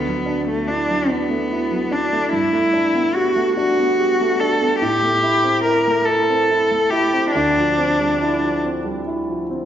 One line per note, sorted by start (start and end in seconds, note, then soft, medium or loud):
0.00 2.29 D2 soft
0.00 0.47 B3 soft
0.07 0.39 F#3 soft
0.26 0.60 D4 soft
0.48 0.81 A3 soft
0.48 0.70 A3 soft
0.68 1.11 D4 soft
0.68 1.02 E4 soft
0.90 1.23 F#3 soft
1.09 1.94 B3 soft
1.09 1.43 D4 soft
1.30 1.63 A3 soft
1.51 1.84 E4 soft
1.71 2.04 F#3 soft
1.91 2.24 D4 soft
1.91 2.33 D4 medium
2.13 2.33 A3 soft
2.33 4.77 G2 soft
2.33 3.17 E4 medium
2.52 2.86 A3 soft
2.73 3.07 D4 soft
2.95 3.28 B3 soft
3.15 3.56 F#4 medium
3.15 3.49 G4 soft
3.36 3.69 A3 soft
3.56 3.90 D4 soft
3.56 4.42 F#4 medium
3.78 4.11 B3 soft
3.99 4.32 G4 soft
4.21 4.53 A3 soft
4.40 4.73 D4 soft
4.40 4.80 A4 medium
4.62 4.82 B3 soft
4.81 7.29 A2 soft
4.81 5.62 G4 medium
5.02 5.35 A3 soft
5.22 5.56 E4 soft
5.44 5.77 C4 soft
5.64 5.98 E4 soft
5.64 6.07 A#4 medium
5.87 6.20 A3 soft
6.05 6.40 E4 soft
6.05 6.92 A4 medium
6.29 6.61 C4 soft
6.51 6.83 E4 soft
6.71 7.04 A3 soft
6.90 7.25 E4 soft
6.90 7.31 G4 medium
7.13 7.34 C4 soft
7.32 9.65 D2 soft
7.32 8.60 D4 medium
7.57 7.90 F3 soft
7.78 8.12 C4 soft
8.00 8.34 G3 soft
8.21 8.55 E4 soft
8.43 8.77 F3 soft
8.65 8.98 C4 soft
8.85 9.20 G3 soft
9.07 9.42 E4 soft
9.29 9.64 F3 soft
9.50 9.65 C4 soft